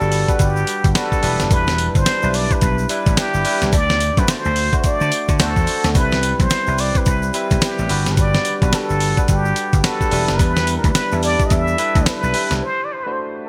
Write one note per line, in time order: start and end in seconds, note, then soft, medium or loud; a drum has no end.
0.00 0.24 G1 medium
0.00 0.28 G3 medium
0.00 0.29 D4 medium
0.00 0.96 F#4 medium
0.00 0.43 A4 loud
0.00 0.29 B4 medium
0.00 1.25 D5 medium
0.00 shaker soft
0.12 open hi-hat medium
0.12 tambourine medium
0.12 shaker soft
0.28 0.75 G3 medium
0.28 0.75 D4 medium
0.28 0.76 B4 medium
0.28 0.75 F#5 medium
0.28 kick medium
0.28 closed hi-hat soft
0.28 shaker medium
0.39 0.63 G1 medium
0.39 0.99 G4 medium
0.39 kick medium
0.39 closed hi-hat medium
0.39 shaker medium
0.56 shaker soft
0.67 closed hi-hat medium
0.67 tambourine medium
0.67 shaker medium
0.84 0.93 G1 medium
0.84 kick loud
0.84 closed hi-hat medium
0.84 shaker medium
0.95 1.21 G3 medium
0.95 1.22 D4 medium
0.95 1.23 F#4 medium
0.95 1.54 A4 medium
0.95 1.22 B4 loud
0.95 snare loud
0.95 closed hi-hat medium
0.95 tambourine loud
0.95 shaker medium
1.12 kick medium
1.12 shaker medium
1.23 1.37 E1 loud
1.23 2.02 G3 medium
1.23 2.02 D4 medium
1.23 2.02 E4 medium
1.23 2.02 B4 loud
1.23 open hi-hat medium
1.23 tambourine medium
1.23 shaker medium
1.40 1.49 F#1 medium
1.40 snare medium
1.40 closed hi-hat medium
1.40 shaker medium
1.51 1.88 E1 loud
1.51 1.98 B4 loud
1.51 kick loud
1.51 closed hi-hat medium
1.51 tambourine medium
1.51 shaker medium
1.67 snare medium
1.67 shaker soft
1.78 closed hi-hat medium
1.78 tambourine medium
1.78 shaker medium
1.95 2.04 G1 medium
1.95 2.37 C5 loud
1.95 kick loud
1.95 closed hi-hat medium
1.95 shaker soft
2.06 snare loud
2.06 closed hi-hat medium
2.06 tambourine loud
2.06 shaker medium
2.22 2.46 B1 medium
2.22 2.69 G3 medium
2.22 2.70 D4 medium
2.22 2.70 E4 medium
2.22 2.70 B4 medium
2.22 shaker soft
2.34 2.54 D5 loud
2.34 open hi-hat medium
2.34 tambourine medium
2.34 shaker soft
2.51 2.91 B4 medium
2.51 kick medium
2.51 closed hi-hat medium
2.51 shaker soft
2.61 2.85 B1 loud
2.61 kick medium
2.61 closed hi-hat medium
2.61 shaker medium
2.78 shaker soft
2.89 3.30 G3 medium
2.89 3.30 D4 medium
2.89 3.31 E4 medium
2.89 3.31 B4 loud
2.89 closed hi-hat medium
2.89 tambourine medium
2.89 shaker medium
3.06 3.16 A1 medium
3.06 kick loud
3.06 closed hi-hat medium
3.06 shaker medium
3.17 3.76 G4 loud
3.17 muted slap bass stroke medium
3.17 snare loud
3.17 closed hi-hat medium
3.17 tambourine loud
3.17 shaker medium
3.34 3.43 G1 medium
3.34 shaker medium
3.45 3.73 G3 medium
3.45 3.73 D4 medium
3.45 3.73 E4 medium
3.45 3.73 B4 loud
3.45 open hi-hat medium
3.45 tambourine medium
3.45 shaker medium
3.61 3.71 C2 medium
3.61 snare medium
3.61 closed hi-hat medium
3.61 shaker medium
3.72 4.10 D2 loud
3.72 4.21 D5 loud
3.72 kick loud
3.72 closed hi-hat medium
3.72 tambourine medium
3.72 shaker medium
3.89 snare medium
3.89 shaker soft
4.00 closed hi-hat medium
4.00 tambourine medium
4.00 shaker medium
4.17 4.27 F#2 medium
4.17 4.53 A3 medium
4.17 4.54 D4 medium
4.17 4.54 F#4 medium
4.17 4.31 B4 loud
4.17 4.54 C5 medium
4.17 kick medium
4.17 closed hi-hat medium
4.17 shaker soft
4.28 4.85 C5 loud
4.28 muted slap bass stroke soft
4.28 snare loud
4.28 closed hi-hat medium
4.28 tambourine loud
4.28 shaker medium
4.45 4.68 D2 loud
4.45 shaker soft
4.56 open hi-hat medium
4.56 tambourine medium
4.56 shaker soft
4.73 5.19 A3 medium
4.73 5.20 D4 medium
4.73 5.20 F#4 medium
4.73 5.20 C5 medium
4.73 kick loud
4.73 closed hi-hat soft
4.73 shaker soft
4.84 5.43 D5 loud
4.84 kick medium
4.84 closed hi-hat medium
4.84 shaker medium
5.01 5.10 D3 loud
5.01 shaker medium
5.12 closed hi-hat medium
5.12 tambourine medium
5.12 shaker medium
5.28 5.38 D3 loud
5.28 kick loud
5.28 closed hi-hat medium
5.28 shaker medium
5.39 5.54 D2 loud
5.39 5.80 A3 medium
5.39 5.80 D4 medium
5.39 5.81 F#4 medium
5.39 5.98 A4 loud
5.39 5.81 C5 loud
5.39 snare loud
5.39 closed hi-hat medium
5.39 tambourine loud
5.39 shaker medium
5.56 5.66 E2 medium
5.56 kick medium
5.56 shaker medium
5.67 open hi-hat medium
5.67 tambourine medium
5.67 shaker soft
5.84 5.93 D2 medium
5.84 snare medium
5.84 closed hi-hat medium
5.84 shaker medium
5.95 6.32 C2 loud
5.95 6.45 G3 medium
5.95 6.45 C4 medium
5.95 6.45 E4 medium
5.95 6.45 B4 medium
5.95 6.43 B4 loud
5.95 kick loud
5.95 closed hi-hat medium
5.95 tambourine medium
5.95 shaker medium
6.12 snare medium
6.12 shaker soft
6.23 closed hi-hat medium
6.23 tambourine medium
6.23 shaker medium
6.40 6.49 B1 loud
6.40 6.82 C5 loud
6.40 kick loud
6.40 closed hi-hat medium
6.40 shaker soft
6.50 muted slap bass stroke soft
6.50 snare loud
6.50 closed hi-hat medium
6.50 tambourine loud
6.50 shaker medium
6.67 6.91 C2 medium
6.67 7.14 G3 medium
6.67 7.14 C4 medium
6.67 7.14 E4 medium
6.67 7.14 B4 medium
6.67 shaker soft
6.78 6.99 D5 loud
6.78 open hi-hat medium
6.78 tambourine medium
6.78 shaker medium
6.95 7.36 B4 medium
6.95 kick loud
6.95 closed hi-hat medium
6.95 shaker soft
7.06 7.30 C2 loud
7.06 kick medium
7.06 closed hi-hat medium
7.06 shaker medium
7.22 shaker medium
7.34 7.75 G3 medium
7.34 7.75 C4 medium
7.34 7.75 E4 medium
7.34 7.75 B4 loud
7.34 closed hi-hat medium
7.34 tambourine medium
7.34 shaker medium
7.51 7.60 B1 medium
7.51 kick medium
7.51 closed hi-hat medium
7.51 shaker medium
7.61 8.21 G4 medium
7.61 muted slap bass stroke medium
7.61 snare loud
7.61 closed hi-hat medium
7.61 tambourine loud
7.61 shaker medium
7.78 7.88 A1 medium
7.78 shaker medium
7.89 8.36 G1 loud
7.89 8.45 G3 medium
7.89 8.45 D4 medium
7.89 8.45 F#4 medium
7.89 8.46 B4 medium
7.89 open hi-hat medium
7.89 tambourine medium
7.89 shaker soft
8.06 snare medium
8.06 closed hi-hat medium
8.06 shaker medium
8.17 8.63 D5 loud
8.17 kick loud
8.17 closed hi-hat medium
8.17 tambourine medium
8.17 shaker medium
8.34 snare medium
8.34 shaker soft
8.45 closed hi-hat medium
8.45 tambourine medium
8.45 shaker medium
8.62 8.71 B1 medium
8.62 8.98 G3 medium
8.62 8.98 D4 medium
8.62 8.98 F#4 medium
8.62 8.99 B4 medium
8.62 8.76 B4 loud
8.62 kick loud
8.62 closed hi-hat medium
8.62 shaker soft
8.73 9.29 A4 loud
8.73 muted slap bass stroke soft
8.73 snare loud
8.73 closed hi-hat medium
8.73 tambourine loud
8.73 shaker medium
8.90 9.13 G1 medium
8.90 shaker soft
9.00 open hi-hat medium
9.00 tambourine medium
9.00 shaker medium
9.17 9.64 G3 medium
9.17 9.64 D4 medium
9.17 9.64 B4 medium
9.17 9.64 F#5 medium
9.17 kick loud
9.17 closed hi-hat medium
9.17 shaker medium
9.28 9.52 G1 medium
9.28 9.87 G4 loud
9.28 kick medium
9.28 closed hi-hat medium
9.28 shaker medium
9.45 shaker medium
9.56 closed hi-hat medium
9.56 tambourine medium
9.56 shaker medium
9.73 9.82 G1 loud
9.73 kick loud
9.73 closed hi-hat medium
9.73 shaker medium
9.84 10.10 G3 medium
9.84 10.11 D4 medium
9.84 10.12 F#4 medium
9.84 10.37 A4 loud
9.84 10.12 B4 medium
9.84 snare loud
9.84 closed hi-hat medium
9.84 tambourine loud
9.84 shaker medium
10.01 kick medium
10.01 shaker medium
10.11 10.26 E1 loud
10.11 10.91 G3 medium
10.11 10.91 D4 medium
10.11 10.91 E4 medium
10.11 10.91 B4 medium
10.11 open hi-hat medium
10.11 tambourine medium
10.11 shaker soft
10.28 10.38 F#1 medium
10.28 snare medium
10.28 closed hi-hat medium
10.28 shaker medium
10.36 10.43 A#4 medium
10.36 kick loud
10.36 closed hi-hat medium
10.36 tambourine medium
10.36 shaker medium
10.40 10.77 E2 loud
10.40 10.76 B4 loud
10.56 snare medium
10.56 shaker soft
10.67 closed hi-hat medium
10.67 tambourine medium
10.67 shaker medium
10.77 10.87 A#4 medium
10.84 10.93 D2 medium
10.84 11.24 B4 loud
10.84 kick medium
10.84 closed hi-hat medium
10.84 shaker soft
10.95 snare loud
10.95 closed hi-hat medium
10.95 tambourine loud
10.95 shaker medium
11.12 11.35 E2 medium
11.12 11.58 G3 medium
11.12 11.59 D4 medium
11.12 11.59 E4 medium
11.12 11.59 A4 medium
11.12 shaker soft
11.23 11.48 D5 loud
11.23 open hi-hat medium
11.23 tambourine medium
11.23 shaker medium
11.40 kick loud
11.40 closed hi-hat medium
11.40 shaker soft
11.46 11.53 D#5 medium
11.50 11.74 E2 medium
11.50 12.09 E5 loud
11.50 kick medium
11.50 closed hi-hat medium
11.50 shaker medium
11.68 shaker soft
11.78 12.19 G3 medium
11.78 12.19 D4 medium
11.78 12.19 E4 medium
11.78 12.20 B4 loud
11.78 closed hi-hat medium
11.78 tambourine medium
11.78 shaker medium
11.95 12.05 D2 medium
11.95 kick loud
11.95 closed hi-hat medium
11.95 shaker medium
12.06 12.65 B4 loud
12.06 muted slap bass stroke medium
12.06 snare loud
12.06 closed hi-hat medium
12.06 tambourine loud
12.06 shaker medium
12.23 12.32 B1 loud
12.23 shaker medium
12.34 12.62 G3 medium
12.34 12.62 D4 medium
12.34 12.62 E4 medium
12.34 12.62 B4 medium
12.34 open hi-hat medium
12.34 tambourine medium
12.34 shaker medium
12.51 12.60 C2 medium
12.51 snare medium
12.51 closed hi-hat medium
12.51 shaker medium
12.63 12.86 C5 loud
12.85 12.94 D5 medium
12.93 13.05 C5 medium
13.04 13.42 A3 medium
13.04 13.43 D4 medium
13.04 13.43 F#4 medium
13.04 13.14 B4 medium
13.04 13.43 C5 medium
13.13 13.19 C5 medium